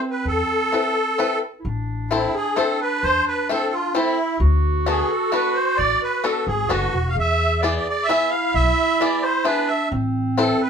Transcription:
Already playing: C4
0.11 B4
0.25 E2 A4
0.72 C4 E4 A4 B4
1.18 C4 E4 A4 B4
1.59 E4
1.65 A1 D4
2.11 A3 C4 E4 A4 C5
2.35 G#4
2.55 A3 C4 E4 A4 C5
2.81 B4
3.03 E2 C5
3.27 B4
3.49 A3 C4 E4 A4 C5
3.73 F4
3.95 A3 C4 E4 A4 C5
4.40 D2 F#4
4.86 B3 D4 F#4 G#4 A4 B4
5.11 A4
5.32 B3 D4 F#4 A4 B4
5.54 C5
5.77 A1 D5
6.03 B4
6.24 B3 D4 F#4 A4 B4
6.47 G#1 G#4
6.68 F#1 B3 D4 F#4 A4 B4
6.93 E1
7.09 F5
7.15 E2 G#4 E5
7.61 B3 E4 G#4 B4 D5 E5
7.76 D5
7.89 D5
8.04 E5
8.09 B3 E4 G#4 B4 E5
8.30 F5
8.54 B1 E5
9.01 B3 E4 G#4 B4 D5 E5
9.23 C5
9.44 B3 D4 E4 G#4 B4 E5
9.67 E5
9.90 A1 C4
10.38 C4 E4 A4 B4 C5
10.62 B4

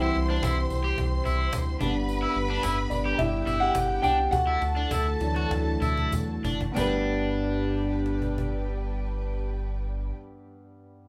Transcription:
Already playing: C2 C3 E3 G3 C4 D4 E4 F#4 G4 C5 D5 E5 F#5 G5 C6
0.02 E4
0.16 C2
0.30 D4
0.43 C2 E4, cajon bass, cajon slap, tambourine
0.70 C2, cajon bass, tambourine
0.84 G4
0.98 C2, cajon bass, tambourine
1.25 C2 E4, cajon bass, tambourine
1.53 D2, cajon bass, cajon slap, tambourine
1.81 G1 D3 G3 B3 D4 B4 B5, cajon bass, tambourine
2.09 tambourine
2.22 E4
2.36 G1
2.50 D4
2.63 G1 E4, cajon bass, cajon slap, tambourine
2.90 G1 D4 D5, cajon bass, tambourine
3.05 G4, cajon slap
3.18 G1 E4 G4 E5 G5, cajon bass, tambourine
3.47 G1 E4, cajon bass, tambourine
3.60 G4 F#5
3.75 G1, cajon bass, cajon slap, tambourine
4.02 C2 D4 G4 G5, cajon bass, tambourine
4.31 D2 D3 A3 E4 F#4 A4 F#5 A5, cajon bass, cajon slap, tambourine
4.47 E4
4.61 D2, cajon slap, tambourine
4.76 D4, cajon slap
4.91 D2 E4, cajon bass, cajon slap, tambourine
5.20 D2 E3 F#3 D4, cajon slap, tambourine
5.36 F#4, cajon slap
5.51 D2, cajon bass, cajon slap, tambourine
5.67 cajon slap
5.81 D2 E4, cajon bass, tambourine
5.97 cajon bass
6.12 E2, cajon bass, tambourine
6.44 F#1 D4, cajon bass, tambourine
6.61 cajon bass
6.72 B3 D4 B4 G5
6.76 G1 G2 G3 D4 G4 B4 D5, cajon bass, tambourine
8.06 cajon slap
8.22 cajon bass
8.38 cajon bass

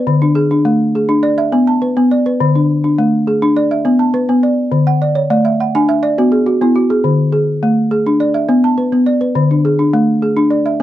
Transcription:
Already playing: B4 D5
0.07 D3
0.22 D4
0.35 G#4
0.51 D4
0.65 A3
0.95 G#4
1.09 D4
1.23 D5
1.38 E5
1.52 B3
1.67 A5
1.82 B4
1.97 B3
2.11 D5
2.26 B4
2.40 D3
2.55 D4
2.84 D4
2.99 A3
3.27 G#4
3.42 D4
3.57 D5
3.71 E5
3.85 B3
3.99 A5
4.14 B4
4.29 B3
4.43 D5
4.72 D3
4.87 F#5
5.02 D5
5.15 C#5
5.30 A3 D5
5.45 E5
5.60 F#5
5.75 D4 G#5
5.89 E5
6.03 D5
6.18 B3 F#4
6.32 G#4
6.46 F#4
6.61 B3 E4
6.75 F#4
6.90 G#4
7.04 D3
7.32 G#4
7.63 A3
7.91 G#4
8.07 D4
8.20 D5
8.34 E5
8.49 B3
8.64 A5
8.78 B4
8.92 B3
9.06 D5
9.21 B4
9.35 D3
9.51 D4
9.65 G#4
9.79 D4
9.94 A3
10.22 G#4
10.37 D4
10.51 D5
10.66 E5

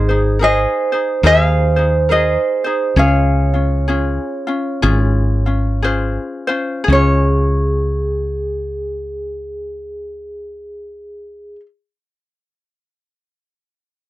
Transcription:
Already playing: G#1 D#4 G#4 C5
0.09 D#4 G#4 C5
0.39 D#4 G#4 A#4 C5
0.44 C5 D#5
0.92 D#4 G#4 C5
1.23 D#2 D#4 G#4 A#4 C5 F5
1.76 D#4 G#4 C5
2.09 D#4 G#4 A#4 C5 D#5
2.64 D#4 G#4 C5
2.96 C#2 C#4 F4 G#4 C#5 F5
3.54 C#4 F4
3.88 C#4 F4 G#4
4.47 C#4 F4
4.82 G#1 C#4 F4 G#4
5.46 C#4 F4
5.82 C#4 F4 G#4 C5
6.47 C#4 F4 C5
6.84 G#4
6.88 C#2 C#4 G#4
6.92 F4 C#5

